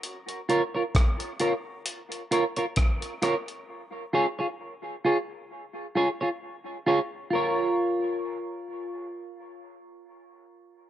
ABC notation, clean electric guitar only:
X:1
M:4/4
L:1/16
Q:"Swing 16ths" 1/4=66
K:Bbm
V:1 name="Clean electric guitar"
z2 [FBd] [FBd] z2 [FBd] z3 [FBd] [FBd] z2 [FBd] z | z2 [FAd] [FAd] z2 [FAd] z3 [FAd] [FAd] z2 [FAd] z | [FBd]16 |]